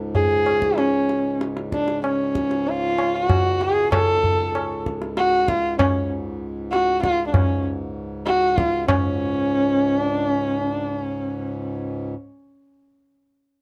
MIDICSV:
0, 0, Header, 1, 4, 480
1, 0, Start_track
1, 0, Key_signature, 7, "major"
1, 0, Tempo, 626959
1, 1083, Time_signature, 4, 2, 24, 8
1, 4913, Tempo, 612870
1, 10552, End_track
2, 0, Start_track
2, 0, Title_t, "Sarangi"
2, 0, Program_c, 0, 110
2, 114, Note_on_c, 0, 68, 118
2, 597, Note_on_c, 0, 61, 96
2, 608, Note_off_c, 0, 68, 0
2, 1081, Note_off_c, 0, 61, 0
2, 1328, Note_on_c, 0, 62, 81
2, 1550, Note_off_c, 0, 62, 0
2, 1566, Note_on_c, 0, 61, 90
2, 2058, Note_on_c, 0, 65, 111
2, 2069, Note_off_c, 0, 61, 0
2, 2415, Note_on_c, 0, 66, 111
2, 2427, Note_off_c, 0, 65, 0
2, 2774, Note_on_c, 0, 68, 111
2, 2786, Note_off_c, 0, 66, 0
2, 3005, Note_off_c, 0, 68, 0
2, 3009, Note_on_c, 0, 69, 118
2, 3694, Note_off_c, 0, 69, 0
2, 3962, Note_on_c, 0, 66, 124
2, 4197, Note_on_c, 0, 65, 114
2, 4209, Note_off_c, 0, 66, 0
2, 4422, Note_off_c, 0, 65, 0
2, 4427, Note_on_c, 0, 61, 81
2, 4652, Note_off_c, 0, 61, 0
2, 5143, Note_on_c, 0, 66, 109
2, 5374, Note_off_c, 0, 66, 0
2, 5394, Note_on_c, 0, 65, 111
2, 5576, Note_off_c, 0, 65, 0
2, 5581, Note_on_c, 0, 62, 65
2, 5635, Note_on_c, 0, 61, 80
2, 5647, Note_off_c, 0, 62, 0
2, 5879, Note_off_c, 0, 61, 0
2, 6353, Note_on_c, 0, 66, 122
2, 6591, Note_on_c, 0, 65, 112
2, 6603, Note_off_c, 0, 66, 0
2, 6833, Note_off_c, 0, 65, 0
2, 6838, Note_on_c, 0, 61, 105
2, 7739, Note_off_c, 0, 61, 0
2, 7739, Note_on_c, 0, 62, 105
2, 7958, Note_off_c, 0, 62, 0
2, 7958, Note_on_c, 0, 61, 105
2, 8240, Note_off_c, 0, 61, 0
2, 8240, Note_on_c, 0, 62, 105
2, 8459, Note_off_c, 0, 62, 0
2, 8459, Note_on_c, 0, 61, 105
2, 9354, Note_off_c, 0, 61, 0
2, 10552, End_track
3, 0, Start_track
3, 0, Title_t, "Harmonium"
3, 0, Program_c, 1, 20
3, 0, Note_on_c, 1, 37, 73
3, 0, Note_on_c, 1, 44, 70
3, 6824, Note_off_c, 1, 37, 0
3, 6827, Note_off_c, 1, 44, 0
3, 6836, Note_on_c, 1, 37, 75
3, 6839, Note_on_c, 1, 44, 77
3, 9401, Note_off_c, 1, 37, 0
3, 9403, Note_off_c, 1, 44, 0
3, 10552, End_track
4, 0, Start_track
4, 0, Title_t, "Tabla"
4, 113, Note_on_c, 9, 63, 85
4, 113, Note_on_c, 9, 64, 76
4, 190, Note_off_c, 9, 63, 0
4, 190, Note_off_c, 9, 64, 0
4, 355, Note_on_c, 9, 60, 68
4, 431, Note_off_c, 9, 60, 0
4, 474, Note_on_c, 9, 37, 71
4, 551, Note_off_c, 9, 37, 0
4, 595, Note_on_c, 9, 62, 87
4, 672, Note_off_c, 9, 62, 0
4, 837, Note_on_c, 9, 62, 66
4, 914, Note_off_c, 9, 62, 0
4, 1080, Note_on_c, 9, 62, 86
4, 1157, Note_off_c, 9, 62, 0
4, 1200, Note_on_c, 9, 62, 69
4, 1276, Note_off_c, 9, 62, 0
4, 1320, Note_on_c, 9, 37, 65
4, 1396, Note_off_c, 9, 37, 0
4, 1438, Note_on_c, 9, 62, 70
4, 1515, Note_off_c, 9, 62, 0
4, 1561, Note_on_c, 9, 60, 91
4, 1637, Note_off_c, 9, 60, 0
4, 1801, Note_on_c, 9, 37, 68
4, 1878, Note_off_c, 9, 37, 0
4, 1921, Note_on_c, 9, 62, 65
4, 1998, Note_off_c, 9, 62, 0
4, 2042, Note_on_c, 9, 63, 84
4, 2119, Note_off_c, 9, 63, 0
4, 2285, Note_on_c, 9, 60, 70
4, 2361, Note_off_c, 9, 60, 0
4, 2523, Note_on_c, 9, 60, 91
4, 2523, Note_on_c, 9, 64, 82
4, 2600, Note_off_c, 9, 60, 0
4, 2600, Note_off_c, 9, 64, 0
4, 2764, Note_on_c, 9, 62, 71
4, 2840, Note_off_c, 9, 62, 0
4, 3002, Note_on_c, 9, 60, 117
4, 3002, Note_on_c, 9, 64, 97
4, 3079, Note_off_c, 9, 60, 0
4, 3079, Note_off_c, 9, 64, 0
4, 3245, Note_on_c, 9, 64, 84
4, 3321, Note_off_c, 9, 64, 0
4, 3485, Note_on_c, 9, 60, 86
4, 3561, Note_off_c, 9, 60, 0
4, 3723, Note_on_c, 9, 37, 71
4, 3800, Note_off_c, 9, 37, 0
4, 3841, Note_on_c, 9, 62, 67
4, 3918, Note_off_c, 9, 62, 0
4, 3959, Note_on_c, 9, 62, 85
4, 4035, Note_off_c, 9, 62, 0
4, 4198, Note_on_c, 9, 37, 88
4, 4274, Note_off_c, 9, 37, 0
4, 4435, Note_on_c, 9, 60, 108
4, 4435, Note_on_c, 9, 64, 95
4, 4512, Note_off_c, 9, 60, 0
4, 4512, Note_off_c, 9, 64, 0
4, 5157, Note_on_c, 9, 62, 84
4, 5235, Note_off_c, 9, 62, 0
4, 5397, Note_on_c, 9, 37, 88
4, 5476, Note_off_c, 9, 37, 0
4, 5636, Note_on_c, 9, 60, 102
4, 5636, Note_on_c, 9, 64, 97
4, 5714, Note_off_c, 9, 60, 0
4, 5714, Note_off_c, 9, 64, 0
4, 6362, Note_on_c, 9, 62, 86
4, 6440, Note_off_c, 9, 62, 0
4, 6606, Note_on_c, 9, 37, 87
4, 6684, Note_off_c, 9, 37, 0
4, 6846, Note_on_c, 9, 60, 116
4, 6846, Note_on_c, 9, 64, 100
4, 6924, Note_off_c, 9, 60, 0
4, 6924, Note_off_c, 9, 64, 0
4, 10552, End_track
0, 0, End_of_file